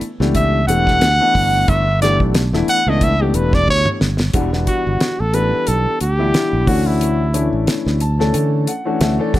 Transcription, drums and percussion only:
0.01 closed hi-hat medium
0.21 snare soft
0.35 kick medium
0.35 closed hi-hat medium
0.69 closed hi-hat medium
0.87 kick medium
0.87 snare soft
1.01 snare loud
1.01 closed hi-hat medium
1.35 kick medium
1.35 open hi-hat medium
1.68 kick loud
1.68 closed hi-hat medium
2.02 snare soft
2.02 closed hi-hat medium
2.20 kick medium
2.35 snare medium
2.35 closed hi-hat medium
2.54 snare soft
2.68 closed hi-hat medium
3.01 kick medium
3.01 closed hi-hat medium
3.34 closed hi-hat medium
3.53 kick medium
3.53 snare soft
3.68 kick medium
3.86 mid tom medium
4.01 snare medium
4.20 snare medium
4.33 kick loud
4.33 closed hi-hat medium
4.53 snare soft
4.67 kick medium
4.67 closed hi-hat medium
5.01 snare medium
5.01 closed hi-hat medium
5.34 closed hi-hat soft
5.67 closed hi-hat medium
6.01 closed hi-hat medium
6.34 snare medium
6.34 closed hi-hat medium
6.67 kick medium
6.67 open hi-hat medium
7.01 closed hi-hat medium
7.34 closed hi-hat medium
7.67 snare medium
7.67 closed hi-hat medium
7.87 snare soft
8.00 closed hi-hat medium
8.20 snare soft
8.34 closed hi-hat medium
8.67 closed hi-hat medium
9.01 snare loud
9.01 closed hi-hat medium
9.34 kick medium
9.34 snare soft
9.34 open hi-hat medium

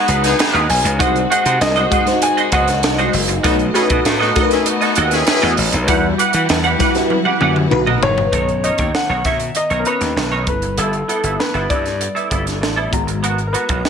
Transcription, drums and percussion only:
0.08 closed hi-hat medium
0.24 snare soft
0.24 closed hi-hat medium
0.39 snare loud
0.39 closed hi-hat medium
0.55 closed hi-hat soft
0.70 open hi-hat medium
0.85 closed hi-hat medium
1.00 kick loud
1.00 closed hi-hat loud
1.16 closed hi-hat soft
1.32 closed hi-hat medium
1.46 closed hi-hat medium
1.61 snare loud
1.61 closed hi-hat medium
1.76 closed hi-hat soft
1.92 kick medium
1.92 closed hi-hat medium
2.07 snare soft
2.07 closed hi-hat soft
2.22 closed hi-hat medium
2.38 closed hi-hat soft
2.52 kick medium
2.52 closed hi-hat medium
2.68 snare soft
2.68 closed hi-hat medium
2.83 snare loud
2.83 closed hi-hat medium
2.99 closed hi-hat soft
3.13 open hi-hat medium
3.29 closed hi-hat medium
3.44 kick loud
3.44 closed hi-hat loud
3.59 closed hi-hat soft
3.75 closed hi-hat medium
3.90 kick loud
3.90 closed hi-hat medium
4.05 snare loud
4.05 closed hi-hat medium
4.22 snare soft
4.36 kick loud
4.36 snare soft
4.36 closed hi-hat medium
4.51 snare soft
4.51 closed hi-hat soft
4.66 closed hi-hat medium
4.81 closed hi-hat soft
4.95 closed hi-hat medium
5.11 snare soft
5.11 closed hi-hat medium
5.27 snare loud
5.27 closed hi-hat medium
5.43 closed hi-hat soft
5.57 open hi-hat medium
5.73 closed hi-hat medium
5.88 kick loud
5.88 closed hi-hat loud
6.19 closed hi-hat medium
6.33 closed hi-hat medium
6.49 snare loud
6.49 closed hi-hat medium
6.64 closed hi-hat soft
6.80 kick loud
6.80 snare soft
6.80 closed hi-hat medium
6.95 snare soft
6.95 closed hi-hat soft
7.10 high tom medium
7.25 high tom medium
7.41 mid tom medium
7.56 mid tom medium
7.71 mid tom medium
7.87 mid tom medium
8.03 floor tom loud
8.18 floor tom medium
8.33 kick loud
8.33 closed hi-hat medium
8.48 closed hi-hat soft
8.64 closed hi-hat medium
8.78 kick medium
8.78 closed hi-hat soft
8.95 snare loud
9.25 kick medium
9.25 snare soft
9.25 closed hi-hat medium
9.40 closed hi-hat soft
9.55 closed hi-hat medium
9.70 closed hi-hat soft
9.85 closed hi-hat medium
10.01 snare soft
10.01 closed hi-hat soft
10.17 snare loud
10.47 kick loud
10.47 closed hi-hat medium
10.62 closed hi-hat soft
10.78 closed hi-hat medium
10.93 closed hi-hat soft
11.09 closed hi-hat medium
11.24 closed hi-hat medium
11.40 snare loud
11.54 closed hi-hat soft
11.70 kick medium
11.70 closed hi-hat medium
11.85 snare soft
11.85 closed hi-hat soft
12.01 closed hi-hat medium
12.16 closed hi-hat soft
12.31 kick medium
12.31 closed hi-hat medium
12.47 snare soft
12.47 closed hi-hat soft
12.63 snare medium
12.93 kick medium
12.93 closed hi-hat medium
13.08 closed hi-hat soft
13.24 closed hi-hat medium
13.38 closed hi-hat soft
13.54 closed hi-hat medium
13.69 kick medium
13.69 closed hi-hat medium
13.85 snare medium

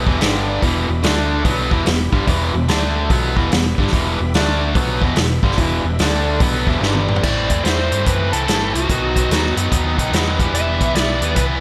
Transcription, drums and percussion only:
0.07 kick medium
0.21 snare loud
0.21 open hi-hat medium
0.62 kick medium
0.62 open hi-hat medium
1.03 snare loud
1.03 open hi-hat medium
1.45 kick loud
1.45 open hi-hat medium
1.71 kick medium
1.86 snare loud
1.86 open hi-hat medium
2.13 kick medium
2.27 kick loud
2.27 open hi-hat medium
2.68 snare loud
2.68 open hi-hat soft
3.10 kick loud
3.10 open hi-hat medium
3.37 kick loud
3.52 snare loud
3.52 open hi-hat medium
3.78 kick medium
3.87 snare soft
3.93 kick loud
3.93 open hi-hat soft
4.34 snare loud
4.34 open hi-hat soft
4.75 kick loud
4.75 open hi-hat medium
5.02 kick loud
5.16 snare loud
5.16 open hi-hat medium
5.43 kick loud
5.51 snare soft
5.58 kick medium
5.58 open hi-hat medium
5.99 snare loud
5.99 open hi-hat medium
6.40 kick loud
6.40 open hi-hat medium
6.67 kick medium
6.83 snare medium
6.95 high tom medium
7.09 mid tom medium
7.16 floor tom medium
7.23 kick loud
7.23 crash medium
7.50 kick medium
7.50 closed hi-hat medium
7.65 snare medium
7.65 closed hi-hat medium
7.92 closed hi-hat medium
8.06 kick loud
8.06 closed hi-hat medium
8.33 closed hi-hat medium
8.48 snare loud
8.48 closed hi-hat medium
8.75 closed hi-hat medium
8.89 kick medium
8.89 closed hi-hat medium
9.16 kick medium
9.16 closed hi-hat medium
9.31 snare loud
9.31 closed hi-hat medium
9.57 closed hi-hat medium
9.72 kick loud
9.72 closed hi-hat medium
9.98 kick medium
9.98 closed hi-hat medium
10.13 snare loud
10.13 closed hi-hat medium
10.39 kick medium
10.39 closed hi-hat soft
10.55 closed hi-hat medium
10.81 kick medium
10.81 closed hi-hat medium
10.95 snare medium
10.95 closed hi-hat medium
11.22 closed hi-hat soft
11.36 kick loud
11.36 closed hi-hat medium

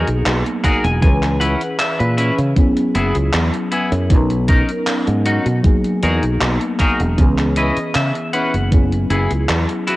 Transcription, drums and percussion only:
0.08 closed hi-hat soft
0.26 clap loud
0.26 closed hi-hat medium
0.46 closed hi-hat soft
0.64 kick medium
0.64 clap soft
0.64 closed hi-hat medium
0.84 closed hi-hat soft
1.02 kick loud
1.02 closed hi-hat medium
1.23 clap soft
1.23 closed hi-hat soft
1.41 closed hi-hat loud
1.61 closed hi-hat soft
1.80 clap loud
1.80 closed hi-hat medium
2.00 closed hi-hat soft
2.18 closed hi-hat loud
2.38 closed hi-hat soft
2.56 kick loud
2.56 closed hi-hat medium
2.77 closed hi-hat soft
2.95 closed hi-hat medium
3.15 closed hi-hat soft
3.33 clap loud
3.33 closed hi-hat medium
3.54 closed hi-hat soft
3.72 closed hi-hat medium
3.92 closed hi-hat soft
4.10 kick loud
4.10 closed hi-hat medium
4.30 closed hi-hat soft
4.48 kick loud
4.48 closed hi-hat medium
4.69 closed hi-hat soft
4.87 clap loud
4.87 closed hi-hat medium
5.07 closed hi-hat soft
5.26 closed hi-hat medium
5.46 closed hi-hat soft
5.64 kick loud
5.64 closed hi-hat medium
5.84 closed hi-hat soft
6.03 closed hi-hat medium
6.23 closed hi-hat soft
6.41 clap loud
6.41 closed hi-hat medium
6.61 closed hi-hat soft
6.80 kick medium
6.80 clap soft
6.80 closed hi-hat medium
7.00 closed hi-hat soft
7.18 kick loud
7.18 closed hi-hat medium
7.38 clap soft
7.38 closed hi-hat soft
7.56 closed hi-hat medium
7.77 closed hi-hat soft
7.95 clap loud
7.95 closed hi-hat medium
8.15 closed hi-hat soft
8.33 closed hi-hat medium
8.54 closed hi-hat soft
8.72 kick loud
8.72 closed hi-hat medium
8.92 closed hi-hat soft
9.10 closed hi-hat medium
9.31 closed hi-hat soft
9.49 clap loud
9.49 closed hi-hat medium
9.69 closed hi-hat soft
9.87 closed hi-hat medium

